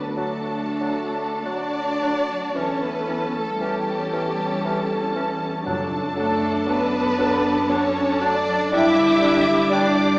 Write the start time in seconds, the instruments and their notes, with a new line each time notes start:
Already playing: double bass section D2, harp D3 F#3 D4 A4, french horn section B3, cello section B3, viola section D4 F#4, violin section B4 A5
0.16 bassoon F#3, cello section A3, french horn section A3, clarinet D4, viola section D4 F#4, harp F#4, violin section A4 A5, flute section A5
0.48 harp D5
0.80 bassoon F#3, clarinet D4, harp F#4, flute section A5
1.14 harp D5
1.44 bassoon F#3, clarinet D4, french horn section D4, cello section D4, viola section D4 F#4, harp F#4, violin section D5 A5, flute section A5
1.76 harp A4
2.02 bassoon F#3, clarinet D4, flute section A5
2.30 harp F#3
2.55 double bass section E2, bassoon E3, harp E3, french horn section C#4, clarinet C#4, cello section C#4, viola section C#4 A4, violin section C#5 A5, flute section A5
2.82 harp A3, french horn section B3, cello section B3, violin section B4
3.08 bassoon E3, clarinet C#4, harp C#4, flute section A5
3.34 french horn section A3, cello section A3, violin section A4, harp A4
3.61 bassoon E3, french horn section G3, cello section G3, clarinet C#4, viola section C#4 A4, harp C#4, violin section G4 A5, flute section A5
3.88 harp C#5
4.13 bassoon E3, clarinet C#4, harp A4, flute section A5
4.40 harp C#5
4.64 bassoon E3, clarinet C#4, harp A4, flute section A5
4.91 harp C#4
5.15 bassoon E3, harp A3, clarinet C#4, flute section A5
5.41 harp C#4
5.66 timpani F#2, harp F#2, double bass section F#2, bassoon F#3, clarinet D4, viola section D4 A4, violin section A5, flute section A5
5.93 harp F#3
6.15 bassoon F#3, french horn section A3, harp A3, cello section A3, clarinet D4, violin section A4, flute section A5
6.42 harp D4
6.66 bassoon F#3, french horn section B3, cello section B3, clarinet D4, harp A4, violin section B4, flute section A5
6.93 harp D4
7.18 bassoon F#3, clarinet D4, harp A4, flute section A5
7.45 harp D4
7.69 bassoon F#3, french horn section C#4, cello section C#4, clarinet D4, harp A4, violin section C#5, flute section A5
7.96 harp D4
8.21 bassoon F#3, harp A3, clarinet D4, french horn section D4, cello section D4, violin section D5, flute section A5
8.48 harp F#3
8.72 harp G2, double bass section G2, bassoon G3, clarinet D4, viola section D4 G4, french horn section E4, cello section E4, violin section E5 D6, flute section G5
8.98 harp D3
9.22 bassoon G3, harp G3, clarinet D4, flute section G5
9.46 harp D4
9.70 bassoon G3, viola section D4 G4, clarinet D4, cello section D4, french horn section D4, violin section D5 D6, flute section G5
9.96 harp G4